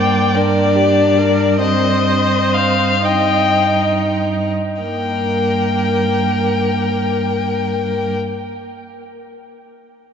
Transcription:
Already playing: cello G2, violin A#3 G5, viola D5
0.35 violin D4 D5, viola A#4
0.75 viola G4
1.18 viola A#4
1.61 violin C4 D#5, viola C5
2.55 violin F5
3.05 violin D#4 G5, viola D#5
4.82 cello G2, viola A#3, violin A#4 G5

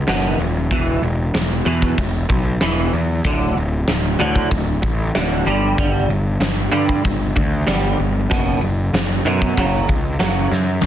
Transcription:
0.07 picked electric bass F#1, clean electric guitar B1 F#2 B2, snare, open hi-hat
0.38 picked electric bass D#1
0.71 picked electric bass E1, clean electric guitar E2 B2 E3, kick, open hi-hat
1.02 picked electric bass E1, clean electric guitar E2 B2
1.34 picked electric bass E1, clean electric guitar E2 B2, snare, open hi-hat
1.65 clean electric guitar E2 B2 E3, picked electric bass E2
1.82 kick
1.98 picked electric bass E1, clean electric guitar E2 B2, kick, open hi-hat
2.29 picked electric bass B1, clean electric guitar E2 B2, kick
2.61 picked electric bass E1, clean electric guitar E2 B2 E3, snare, open hi-hat
2.93 picked electric bass E2
3.24 picked electric bass D1, clean electric guitar D2 A2 D3, kick, open hi-hat
3.57 picked electric bass D1, clean electric guitar D2 A2
3.88 picked electric bass D1, clean electric guitar D2 A2, snare, open hi-hat
4.19 clean electric guitar D2 A2 D3, picked electric bass D2
4.36 kick
4.51 picked electric bass D1, clean electric guitar D2 A2, kick, open hi-hat
4.82 picked electric bass A1, clean electric guitar D2 A2, kick
5.15 picked electric bass D1, clean electric guitar D2 A2 D3, snare, open hi-hat
5.45 picked electric bass G1, clean electric guitar G2 D3 G3
5.78 picked electric bass G1, clean electric guitar G2 D3 G3, kick, open hi-hat
6.09 picked electric bass G1, clean electric guitar G2 D3
6.40 picked electric bass G1, clean electric guitar G2 D3, snare, open hi-hat
6.72 clean electric guitar G2 D3 G3, picked electric bass G2
6.89 kick
7.04 picked electric bass G1, clean electric guitar D3, kick, open hi-hat
7.36 picked electric bass D2, clean electric guitar G2 D3, kick
7.67 picked electric bass G1, clean electric guitar G2 D3 G3, snare, open hi-hat
7.99 picked electric bass G1, clean electric guitar G2 D3
8.30 picked electric bass F#1, clean electric guitar B1 F#2 B2, kick, open hi-hat
8.61 picked electric bass F#1, clean electric guitar B1 F#2
8.93 picked electric bass F#1, clean electric guitar B1 F#2, snare, open hi-hat
9.25 clean electric guitar B1 F#2 B2, picked electric bass F#2
9.42 kick
9.57 picked electric bass F#1, clean electric guitar F#2 C#3 F#3, kick, open hi-hat
9.88 picked electric bass C#2, clean electric guitar F#2 C#3, kick
10.19 picked electric bass F#1, clean electric guitar F#2 C#3 F#3, snare, open hi-hat
10.51 picked electric bass F#2, clean electric guitar F#2 C#3, snare
10.83 clean electric guitar F#2, overdriven electric guitar C#3

